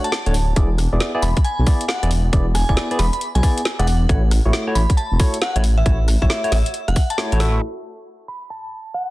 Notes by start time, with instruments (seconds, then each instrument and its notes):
0.04 synth bell A5, closed hi-hat
0.12 snare
0.26 detuned saw bass D1, tine electric piano A3 D4 F#4 C#5, closed hi-hat
0.34 open hi-hat
0.56 detuned saw bass E1, tine electric piano B3 E4 G#4 D5, kick, closed hi-hat
0.78 cross-stick, open hi-hat
0.92 detuned saw bass E1, tine electric piano B3 E4 G#4 D5
1.00 snare
1.15 tine electric piano B3 E4 G#4 D5
1.22 detuned saw bass E1, synth bell B5, open hi-hat
1.37 kick, closed hi-hat
1.45 synth bell G#5, closed hi-hat
1.59 detuned saw bass B1
1.67 tine electric piano B3 E4 G#4 D5, kick, open hi-hat
1.81 closed hi-hat
1.88 synth bell F#5, snare
2.03 detuned saw bass E1, tine electric piano B3 E4 G#4 D5, closed hi-hat
2.11 open hi-hat
2.33 detuned saw bass E1, tine electric piano B3 E4 G#4 D5, kick, closed hi-hat
2.55 synth bell G#5, cross-stick, open hi-hat
2.69 detuned saw bass E1, tine electric piano B3 E4 G#4 D5, synth bell G#5, kick
2.77 snare
2.91 tine electric piano B3 E4 G#4 D5, closed hi-hat
2.99 detuned saw bass E1, synth bell B5, snare, open hi-hat
3.13 synth bell B5, closed hi-hat
3.21 closed hi-hat
3.35 detuned saw bass B1, synth bell G#5, closed hi-hat
3.43 tine electric piano B3 E4 G#4 D5, kick, open hi-hat
3.58 closed hi-hat
3.65 snare
3.79 detuned saw bass E1, tine electric piano B3 E4 G#4 D5, synth bell F#5, closed hi-hat
3.87 synth bell F#5, open hi-hat
4.09 detuned saw bass A1, tine electric piano A3 E4 F#4 C#5, kick, closed hi-hat
4.31 cross-stick, open hi-hat
4.45 detuned saw bass A1, tine electric piano A3 E4 F#4 C#5
4.53 snare
4.67 tine electric piano A3 E4 F#4 C#5
4.75 detuned saw bass A1, synth bell B5, open hi-hat
4.90 kick, closed hi-hat
4.97 synth bell A5, closed hi-hat
5.11 detuned saw bass E1
5.20 tine electric piano A3 E4 F#4 C#5, kick, open hi-hat
5.34 closed hi-hat
5.42 synth bell F#5, snare
5.56 detuned saw bass A1, tine electric piano A3 E4 F#4 C#5, closed hi-hat
5.64 open hi-hat
5.78 synth bell E5
5.86 detuned saw bass A1, tine electric piano A3 E4 F#4 C#5, kick, closed hi-hat
6.08 cross-stick, open hi-hat
6.22 detuned saw bass A1, tine electric piano A3 E4 F#4 C#5, synth bell E5, kick
6.30 synth bell E5, snare
6.44 tine electric piano A3 E4 F#4 C#5, closed hi-hat
6.52 detuned saw bass A1, synth bell E5, snare, open hi-hat
6.66 closed hi-hat
6.74 closed hi-hat
6.88 detuned saw bass E1, synth bell F#5, cross-stick, closed hi-hat
6.96 kick, open hi-hat
7.10 synth bell A5, closed hi-hat
7.18 tine electric piano A3 E4 F#4 C#5, snare
7.32 detuned saw bass A1, tine electric piano A3 E4 F#4 C#5, closed hi-hat
7.40 tine electric piano A3 E4 F#4 E5, snare, open hi-hat
8.28 synth bell B5
8.50 synth bell A5
8.94 synth bell F#5